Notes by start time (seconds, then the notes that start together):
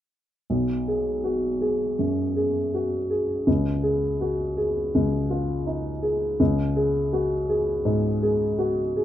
0.50 B1
0.88 G#4
1.24 F#4
1.61 G#4
1.99 F#2
2.36 G#4
2.74 F#4
3.10 G#4
3.47 C#2
3.83 G#4
4.21 F#4
4.57 G#4
4.95 C#2
5.31 F4
5.67 D#4
6.03 G#4
6.40 C#2
6.76 G#4
7.13 F#4
7.49 G#4
7.85 G#2
8.23 G#4
8.59 F#4
8.96 G#4